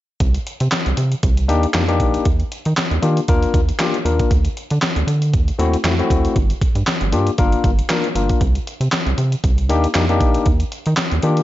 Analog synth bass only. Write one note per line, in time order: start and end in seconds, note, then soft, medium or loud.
0.20 0.38 C2 medium
0.61 0.68 C3 loud
0.86 0.94 C2 loud
0.97 1.15 C3 medium
1.23 1.50 C2 loud
1.49 1.66 D#2 loud
1.74 2.02 F2 medium
2.00 2.18 A#1 medium
2.26 2.43 D#2 loud
2.66 2.74 D#3 loud
2.91 2.99 D#2 medium
3.03 3.20 D#3 loud
3.29 3.46 D#2 medium
3.54 3.72 D#2 loud
4.05 4.23 D#2 medium
4.31 4.48 D2 loud
4.71 4.79 D3 loud
4.96 5.04 D2 loud
5.07 5.35 D3 loud
5.34 5.51 D2 medium
5.59 5.76 D#2 medium
5.84 6.02 F2 loud
6.10 6.28 D2 medium
6.36 6.54 G1 loud
6.75 6.83 G2 medium
7.01 7.14 G1 loud
7.12 7.30 G2 medium
7.39 7.56 G1 medium
7.64 7.82 G1 loud
8.15 8.33 G1 medium
8.41 8.59 C2 loud
8.80 8.88 C3 medium
9.06 9.14 C2 loud
9.18 9.36 C3 loud
9.44 9.71 C2 loud
9.69 9.87 D#2 loud
9.95 10.22 F2 medium
10.21 10.38 A#1 medium
10.46 10.64 D#2 loud
10.87 10.94 D#3 loud
11.12 11.20 D#2 medium
11.23 11.41 D#3 medium